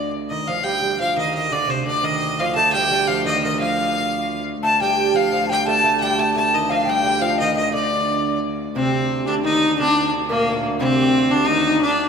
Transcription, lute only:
0.31 D#3
0.49 F3
0.64 G3
0.82 G3
1.00 F3
1.17 D#3
1.52 D3
1.68 C3
1.86 D3
2.03 D#3
2.40 F3
2.56 A3
2.74 G3
2.91 G3
3.09 F3
3.25 D#3
3.44 D#3
3.61 F3
4.63 A3
4.81 G3
5.14 F3
5.33 F3
5.50 G3
5.67 A3
5.84 A3
6.02 G3
6.18 A3
6.35 A3
6.54 D#3
6.70 F3
6.87 G3
7.04 G3
7.22 F3
7.42 D#3
7.57 D#3
7.67 D#3
7.74 D3
8.76 C3
9.28 D2
9.44 D#2
9.79 D2
10.31 A#2
10.52 A#2
10.80 C3
11.32 D2
11.48 D#2
11.82 D2

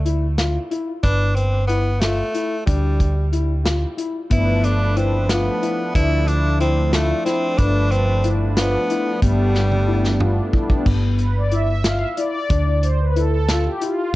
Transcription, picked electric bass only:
Already playing: D2
1.04 G1
2.67 D2
4.31 G1
5.95 D2
7.59 G1
9.22 G1
10.86 G1
12.50 D2

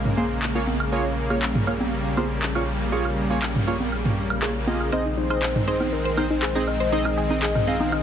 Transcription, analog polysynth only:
0.17 A#3 F4 G#4 C5
0.55 A#3 F4 G#4 C#5
0.92 A#3 F4 G#4 C#5
1.30 A#3 F4 G#4 C#5
1.67 A#3 F4 G#4 C#5
2.17 A#3 F4 G#4 C5
2.55 A#3 F4 G#4 C#5
2.92 A#3 F4 G#4 C#5
3.30 A#3 F4 G#4 C#5
3.67 A#3 F4 G#4 C#5
4.42 A#3 F4 G#4 C#5
4.67 A#3 F4 G#4 D#5
4.92 C4 D#4 G#4 D#5
5.30 C4 D#4 G#4 D#5
5.67 C4 D#4 G#4 D#5
6.17 C4 D#4 G#4 C5
6.55 C4 D#4 G#4 D#5
6.92 C4 D#4 G#4 D#5
7.30 C4 D#4 G#4 D#5
7.67 C4 D#4 G#4 D#5

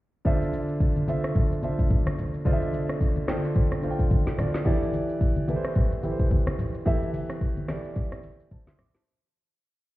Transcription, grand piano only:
0.25 D3 D4 F4 C5 E5
1.07 D3 D4 F4 C5 E5
1.63 D3 D4 F4 C5 E5
2.45 D3 D4 F4 C5 D#5
2.53 E5
3.27 D3 D4 F4 C5 G5
3.82 D3 D4 F4 C5 F5
3.91 G5
4.38 D3 D4 F4 C5 D5
4.65 E3 E4 G4 A4 D5
5.48 E3 E4 G4 A4 B4
5.56 C5
6.03 E3 E4 G4 A4 B4
6.11 C5
6.86 E3 E4 G4 A4 E5
7.68 E3 E4 G4 A4 D5
8.51 C5 A5
8.67 E5 C6
8.79 D6
8.94 C5 A5

